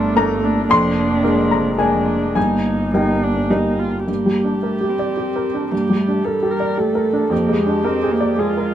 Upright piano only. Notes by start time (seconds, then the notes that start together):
Already playing: G2 D4 A4 A#4 C6
0.15 A#3 D4 A#4 A#5
0.70 F2 C6
1.24 G#3 D4 A#4
1.51 A#5
1.78 G#3 D4 A#4 G#5
2.35 G2 G#5
2.94 G3 D#4 A#4 G5
3.50 G3 D#4 A#4
4.08 G2
4.26 G3
4.44 D4
4.63 A#4
4.81 G4
4.99 D5
5.17 G4
5.36 A#4
5.54 D4
5.72 G2
5.90 G3
6.08 D4
6.25 A#4
6.43 G4
6.60 D5
6.78 G4
6.95 A#4
7.13 D4
7.30 F2
7.49 G#3
7.67 D4
7.85 A#4
8.03 G#4
8.20 D5
8.39 G#4
8.57 A#4